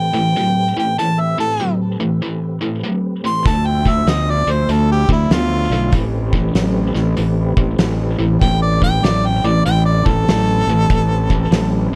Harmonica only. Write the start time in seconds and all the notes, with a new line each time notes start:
Already playing: G5
0.79 G5
0.99 A5
1.20 E5
1.40 A4
3.26 C6
3.47 A5
3.67 G5
3.89 E5
4.09 D#5
4.30 D5
4.51 C5
4.72 A4
4.92 G4
5.13 E4
5.34 F4
8.41 G5
8.63 D5
8.84 G5
9.05 D5
9.26 G5
9.47 D5
9.66 G5
9.86 D5
10.06 A4